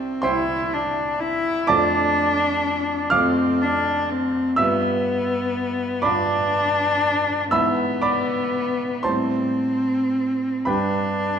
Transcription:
0.00 0.19 C2 soft
0.00 0.19 G3 soft
0.00 0.19 C4 soft
0.00 0.25 C4 medium
0.00 0.19 E4 soft
0.00 0.19 G4 medium
0.00 0.19 E5 medium
0.00 0.21 G5 medium
0.22 1.66 C2 soft
0.22 1.66 G3 soft
0.22 1.66 C4 soft
0.22 0.75 E4 medium
0.22 1.66 E4 soft
0.22 1.65 C5 medium
0.22 1.65 G5 medium
0.22 1.69 C6 medium
0.73 1.22 D4 medium
1.20 1.72 E4 medium
1.67 3.09 F2 soft
1.67 3.09 A3 soft
1.67 3.09 C4 soft
1.67 3.13 D4 medium
1.67 3.09 F4 soft
1.67 3.08 D5 medium
1.67 3.08 A5 medium
1.67 3.10 D6 loud
3.10 4.55 F2 medium
3.10 4.55 A3 soft
3.10 4.55 C4 soft
3.10 3.63 C4 medium
3.10 4.55 F4 soft
3.10 4.54 F5 medium
3.10 4.55 D6 medium
3.10 4.58 F6 loud
3.62 4.11 D4 medium
4.10 4.58 C4 medium
4.56 6.00 G2 medium
4.56 6.00 G3 soft
4.56 6.06 B3 medium
4.56 6.00 B3 soft
4.56 6.00 F4 soft
4.56 6.00 E5 medium
4.56 6.03 E6 medium
6.02 7.49 G2 soft
6.02 7.50 G3 soft
6.02 7.49 B3 soft
6.02 7.51 D4 medium
6.02 7.50 F4 soft
6.02 7.49 D5 medium
6.02 7.49 B5 medium
6.02 7.53 D6 medium
7.51 9.01 G#2 soft
7.51 9.01 E3 soft
7.51 9.06 B3 medium
7.51 9.02 B3 soft
7.51 9.01 E4 soft
7.51 8.00 E5 medium
7.51 8.00 B5 medium
7.51 8.03 E6 loud
8.02 9.01 D5 medium
8.02 9.01 B5 medium
8.02 9.05 D6 medium
9.03 10.62 A2 soft
9.03 10.63 G3 soft
9.03 10.68 C4 medium
9.03 10.63 C4 soft
9.03 10.63 E4 soft
9.03 10.62 C5 medium
9.03 10.62 A5 medium
9.03 10.66 C6 medium
10.65 11.39 G2 soft
10.65 11.39 G3 soft
10.65 11.39 D4 medium
10.65 11.39 D4 soft
10.65 11.39 G4 soft
10.65 11.39 B4 medium
10.65 11.39 G5 medium
10.65 11.39 B5 medium

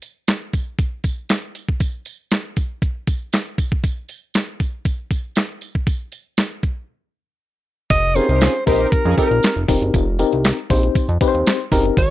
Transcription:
0.02 closed hi-hat medium
0.02 tambourine soft
0.28 snare loud
0.28 clap medium
0.28 closed hi-hat medium
0.28 tambourine medium
0.53 kick medium
0.53 closed hi-hat medium
0.53 tambourine soft
0.79 kick loud
0.79 closed hi-hat medium
0.79 tambourine soft
1.04 kick medium
1.04 closed hi-hat medium
1.04 tambourine soft
1.29 snare loud
1.29 clap medium
1.29 closed hi-hat medium
1.29 tambourine medium
1.55 closed hi-hat medium
1.55 tambourine medium
1.69 kick medium
1.80 kick medium
1.80 closed hi-hat medium
1.80 tambourine medium
2.05 closed hi-hat medium
2.05 tambourine medium
2.31 snare loud
2.31 clap medium
2.31 closed hi-hat medium
2.31 tambourine medium
2.56 kick medium
2.56 closed hi-hat medium
2.56 tambourine soft
2.82 kick loud
2.82 closed hi-hat medium
3.07 kick medium
3.07 closed hi-hat medium
3.07 tambourine soft
3.33 snare loud
3.33 clap medium
3.33 closed hi-hat loud
3.33 tambourine medium
3.58 kick loud
3.58 closed hi-hat medium
3.58 tambourine medium
3.72 kick medium
3.84 kick loud
3.84 closed hi-hat medium
3.84 tambourine soft
4.08 closed hi-hat medium
4.08 tambourine medium
4.34 snare loud
4.34 clap medium
4.34 closed hi-hat medium
4.34 tambourine medium
4.60 kick medium
4.60 closed hi-hat medium
4.60 tambourine soft
4.85 kick loud
4.85 closed hi-hat medium
4.85 tambourine soft
5.11 kick medium
5.11 closed hi-hat medium
5.11 tambourine soft
5.36 snare loud
5.36 clap medium
5.36 closed hi-hat medium
5.36 tambourine medium
5.61 closed hi-hat medium
5.61 tambourine medium
5.75 kick medium
5.87 kick loud
5.87 closed hi-hat medium
5.87 tambourine medium
6.12 closed hi-hat medium
6.12 tambourine medium
6.37 snare loud
6.37 clap medium
6.37 closed hi-hat medium
6.37 tambourine medium
6.63 kick medium
6.63 closed hi-hat medium
7.90 8.20 F1 loud
7.90 8.17 D#5 loud
7.90 kick loud
7.90 closed hi-hat loud
7.90 tambourine medium
8.15 8.53 C4 loud
8.15 8.27 C#4 medium
8.15 8.53 D#4 medium
8.15 8.27 F4 medium
8.15 8.53 G4 medium
8.15 8.27 G#4 medium
8.15 8.54 A#4 loud
8.15 8.66 C5 loud
8.15 closed hi-hat medium
8.15 tambourine medium
8.29 8.49 C2 medium
8.29 8.39 D#4 medium
8.29 8.39 G4 medium
8.29 8.39 A#4 medium
8.29 closed hi-hat medium
8.41 8.52 C#4 medium
8.41 8.52 F4 medium
8.41 8.52 G#4 loud
8.41 snare loud
8.41 clap medium
8.41 closed hi-hat medium
8.41 tambourine loud
8.56 closed hi-hat soft
8.66 8.87 A#1 loud
8.66 9.04 C4 medium
8.66 8.87 D#4 loud
8.66 9.04 D#4 medium
8.66 8.87 G4 loud
8.66 9.04 G4 medium
8.66 8.87 A#4 loud
8.66 9.04 A#4 medium
8.66 8.93 C5 loud
8.66 kick loud
8.66 open hi-hat medium
8.80 closed hi-hat medium
8.92 8.97 F2 soft
8.92 9.17 A#4 medium
8.92 kick loud
8.92 closed hi-hat medium
9.05 9.15 F2 loud
9.05 9.15 C#4 medium
9.05 9.15 F4 medium
9.05 9.15 G#4 loud
9.05 closed hi-hat soft
9.17 9.55 C4 medium
9.17 9.28 D#4 loud
9.17 9.55 D#4 medium
9.17 9.28 G4 medium
9.17 9.55 G4 medium
9.17 9.28 A#4 loud
9.17 9.55 A#4 loud
9.17 9.65 A#4 medium
9.17 kick medium
9.17 closed hi-hat medium
9.17 tambourine medium
9.31 9.40 A#1 medium
9.31 closed hi-hat soft
9.43 snare loud
9.43 clap medium
9.43 closed hi-hat loud
9.43 tambourine medium
9.56 9.66 F1 medium
9.56 closed hi-hat soft
9.68 9.79 F1 loud
9.68 10.06 C4 medium
9.68 10.06 D#4 medium
9.68 10.06 G4 medium
9.68 10.06 A#4 loud
9.68 kick loud
9.68 open hi-hat medium
9.68 tambourine medium
9.81 9.91 F#1 medium
9.81 closed hi-hat medium
9.94 10.24 F1 loud
9.94 kick loud
9.94 closed hi-hat loud
9.94 tambourine medium
10.19 10.57 C4 loud
10.19 10.57 D#4 loud
10.19 10.57 G4 medium
10.19 10.57 A#4 loud
10.19 closed hi-hat medium
10.19 tambourine medium
10.33 10.52 C2 medium
10.33 closed hi-hat medium
10.44 snare loud
10.44 clap medium
10.44 closed hi-hat medium
10.44 tambourine medium
10.59 closed hi-hat soft
10.70 10.90 A#1 loud
10.70 11.07 C4 medium
10.70 11.08 D#4 medium
10.70 11.08 G4 medium
10.70 11.08 C5 loud
10.70 kick loud
10.70 open hi-hat medium
10.70 tambourine soft
10.83 closed hi-hat medium
10.95 11.01 F2 soft
10.95 kick loud
10.95 closed hi-hat medium
10.95 tambourine soft
11.09 11.18 F2 loud
11.09 closed hi-hat soft
11.21 11.58 C4 loud
11.21 11.58 D#4 loud
11.21 11.59 G4 loud
11.21 11.28 B4 loud
11.21 kick loud
11.21 closed hi-hat medium
11.21 tambourine medium
11.28 11.62 C5 loud
11.34 11.44 D#2 loud
11.34 closed hi-hat medium
11.47 snare loud
11.47 clap loud
11.47 closed hi-hat medium
11.47 tambourine medium
11.60 closed hi-hat soft
11.71 11.91 F#1 loud
11.71 11.97 C4 medium
11.71 11.97 D#4 medium
11.71 11.97 G4 medium
11.71 11.97 A#4 loud
11.71 kick loud
11.71 open hi-hat medium
11.71 tambourine medium
11.85 closed hi-hat soft
11.97 12.10 G#1 loud
11.97 12.10 C#5 loud
11.97 kick loud
11.97 closed hi-hat medium
11.97 tambourine medium

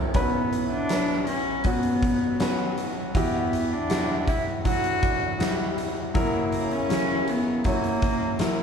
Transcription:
0.00 0.11 F#1 medium
0.00 0.11 F#2 medium
0.00 0.14 F#2 medium
0.00 0.22 E3 medium
0.00 0.14 F#3 medium
0.00 0.22 A#3 medium
0.00 0.17 E4 medium
0.00 0.22 E4 medium
0.00 0.14 F#4 medium
0.00 0.16 A#4 medium
0.00 0.12 C#5 medium
0.13 3.11 B1 medium
0.13 1.64 B2 medium
0.13 3.11 B2 medium
0.13 1.61 E3 medium
0.13 0.86 F#3 medium
0.13 0.68 B3 medium
0.13 0.86 C#4 medium
0.13 1.61 E4 medium
0.13 0.51 F#4 medium
0.13 0.87 B4 loud
0.13 kick loud
0.13 closed hi-hat medium
0.52 1.08 F#4 medium
0.52 closed hi-hat medium
0.72 1.24 D4 loud
0.89 2.40 F#3 medium
0.89 1.61 F#3 medium
0.89 1.62 B4 medium
0.89 1.62 C#5 medium
0.89 snare loud
0.89 closed hi-hat medium
1.08 1.65 F#4 medium
1.27 1.83 B3 medium
1.27 1.67 C#4 medium
1.27 closed hi-hat medium
1.46 2.20 C#4 medium
1.64 3.14 B2 medium
1.64 2.36 F#3 medium
1.64 2.77 B3 loud
1.64 2.36 C#4 medium
1.64 2.02 F#4 medium
1.64 2.37 F#4 medium
1.64 kick medium
1.64 closed hi-hat medium
1.83 2.75 B3 medium
1.83 closed hi-hat medium
2.02 2.76 F#3 medium
2.02 2.76 F#4 medium
2.02 2.57 F#4 medium
2.02 kick medium
2.02 closed hi-hat medium
2.21 2.94 C#4 medium
2.40 3.11 F#3 medium
2.40 3.73 F#3 medium
2.40 3.11 C#4 medium
2.40 3.12 B4 medium
2.40 snare loud
2.40 closed hi-hat medium
2.58 3.14 F#4 medium
2.76 3.32 B3 medium
2.76 closed hi-hat medium
2.95 3.22 C#4 medium
3.14 6.11 E2 medium
3.14 4.64 E3 medium
3.14 4.25 E3 medium
3.14 3.74 B3 medium
3.14 3.86 E4 medium
3.14 4.26 E4 medium
3.14 3.51 F#4 medium
3.14 3.86 F#4 medium
3.14 3.87 G4 medium
3.14 kick loud
3.14 closed hi-hat medium
3.33 4.25 B3 medium
3.52 4.06 F#4 medium
3.52 closed hi-hat medium
3.70 4.27 D4 loud
3.70 4.44 E4 medium
3.89 5.38 G3 medium
3.89 4.61 E4 medium
3.89 4.61 F#4 medium
3.89 4.62 G4 medium
3.89 snare loud
3.89 closed hi-hat medium
4.07 4.64 F#4 medium
4.26 4.82 B3 medium
4.26 4.44 E4 medium
4.26 kick medium
4.26 closed hi-hat medium
4.45 5.20 E4 medium
4.64 5.75 D3 medium
4.64 6.37 E3 medium
4.64 5.36 F#3 medium
4.64 5.75 D4 medium
4.64 5.36 E4 medium
4.64 5.01 F#4 medium
4.64 5.74 F#4 loud
4.64 5.37 F#4 medium
4.64 kick medium
4.64 closed hi-hat medium
4.83 5.76 B3 medium
4.83 closed hi-hat medium
5.02 5.58 F#4 medium
5.02 kick medium
5.02 closed hi-hat medium
5.21 5.96 E4 medium
5.39 6.22 G3 medium
5.39 6.11 G3 medium
5.39 6.11 E4 medium
5.39 6.11 F#4 medium
5.39 snare loud
5.39 closed hi-hat medium
5.59 6.16 F#4 medium
5.77 6.22 B3 medium
5.77 closed hi-hat medium
5.97 6.37 E4 medium
6.14 8.63 F#1 medium
6.14 8.63 F#2 medium
6.14 7.63 F#2 medium
6.14 8.63 C#3 medium
6.14 6.86 F#3 medium
6.14 6.74 A#3 medium
6.14 8.63 C#4 medium
6.14 6.86 E4 medium
6.14 6.52 F#4 medium
6.14 6.87 A#4 loud
6.14 kick loud
6.14 closed hi-hat medium
6.34 7.27 A#3 medium
6.52 7.07 F#4 medium
6.52 closed hi-hat medium
6.71 7.30 C#4 loud
6.71 closed hi-hat soft
6.89 8.37 E3 medium
6.89 7.61 F#3 medium
6.89 7.61 E4 medium
6.89 7.61 A#4 medium
6.89 snare medium
6.89 closed hi-hat medium
7.08 7.64 F#4 medium
7.28 7.65 B3 medium
7.28 closed hi-hat medium
7.45 8.20 C#4 medium
7.64 8.63 F#2 medium
7.64 8.36 F#3 medium
7.64 8.63 A#3 loud
7.64 8.36 E4 medium
7.64 8.02 F#4 medium
7.64 8.37 C#5 medium
7.64 kick medium
7.64 closed hi-hat medium
7.83 8.63 A#3 medium
7.83 closed hi-hat medium
8.02 8.57 F#4 medium
8.02 kick medium
8.02 closed hi-hat medium
8.38 8.63 E3 medium
8.38 8.63 F#3 medium
8.38 8.63 E4 medium
8.38 8.63 A#4 medium
8.38 snare loud
8.38 closed hi-hat medium
8.58 8.63 F#4 medium

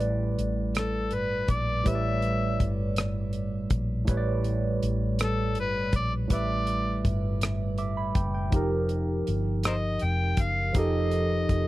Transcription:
0.00 0.34 A1 medium
0.00 1.81 A2 medium
0.00 1.82 G3 medium
0.00 1.83 B4 medium
0.00 1.84 D5 medium
0.00 closed hi-hat soft
0.39 1.13 A1 medium
0.39 closed hi-hat soft
0.75 1.15 A4 medium
0.75 cross-stick medium
0.75 closed hi-hat medium
1.11 1.46 G1 medium
1.11 1.52 B4 medium
1.11 closed hi-hat soft
1.48 1.82 A#1 medium
1.48 1.89 D5 medium
1.48 kick medium
1.48 closed hi-hat soft
1.83 2.56 A1 medium
1.83 4.03 A2 medium
1.83 4.04 G3 medium
1.83 4.04 B4 medium
1.83 kick medium
1.83 closed hi-hat medium
1.88 1.94 C#5 soft
1.88 2.70 E5 medium
1.95 4.09 D5 medium
2.22 closed hi-hat soft
2.60 3.68 G1 medium
2.60 kick medium
2.60 closed hi-hat soft
2.96 cross-stick medium
2.96 closed hi-hat medium
3.33 closed hi-hat soft
3.70 4.05 A#1 medium
3.70 kick medium
3.70 closed hi-hat soft
4.05 4.78 A1 medium
4.05 6.25 A2 medium
4.05 6.26 G3 medium
4.05 6.27 B4 medium
4.05 kick loud
4.05 closed hi-hat medium
4.11 4.16 C#5 medium
4.17 6.31 D5 medium
4.44 closed hi-hat soft
4.83 5.57 A1 medium
4.83 closed hi-hat soft
5.19 cross-stick medium
5.19 closed hi-hat medium
5.23 5.56 A4 medium
5.55 5.90 G1 medium
5.55 closed hi-hat soft
5.60 5.93 B4 medium
5.93 6.27 A#1 medium
5.93 6.12 D5 medium
5.93 kick medium
5.93 closed hi-hat soft
6.28 7.01 A1 medium
6.28 8.47 A2 medium
6.28 8.48 G3 soft
6.28 8.49 B4 medium
6.28 kick medium
6.28 closed hi-hat medium
6.33 7.11 D5 medium
6.33 7.77 E5 medium
6.67 closed hi-hat soft
7.05 8.12 G1 medium
7.05 kick medium
7.05 closed hi-hat soft
7.41 cross-stick medium
7.41 closed hi-hat medium
7.78 8.13 E5 medium
7.78 7.96 D6 medium
7.78 closed hi-hat soft
7.97 8.32 B5 medium
8.15 8.49 F#1 medium
8.15 8.33 G5 medium
8.15 kick medium
8.15 closed hi-hat soft
8.34 8.69 G5 soft
8.50 9.23 F1 medium
8.50 10.70 F3 medium
8.50 10.70 D#4 medium
8.50 10.71 G4 medium
8.50 kick loud
8.50 closed hi-hat medium
8.56 10.73 A#4 medium
8.89 closed hi-hat soft
9.27 9.98 G1 medium
9.27 closed hi-hat soft
9.63 9.73 A#4 medium
9.63 9.75 C5 medium
9.63 10.05 D#5 medium
9.63 cross-stick medium
9.63 closed hi-hat medium
9.99 10.35 F1 medium
9.99 closed hi-hat soft
10.04 10.43 G5 medium
10.37 10.71 F#1 medium
10.37 kick medium
10.37 closed hi-hat soft
10.41 10.76 F5 medium
10.73 11.45 F1 loud
10.73 11.68 F3 medium
10.73 11.68 D#4 medium
10.73 11.68 G4 medium
10.73 kick medium
10.73 closed hi-hat medium
10.78 11.68 A4 medium
10.78 11.68 D#5 medium
11.11 closed hi-hat soft
11.49 11.68 F1 medium
11.49 kick medium
11.49 closed hi-hat soft

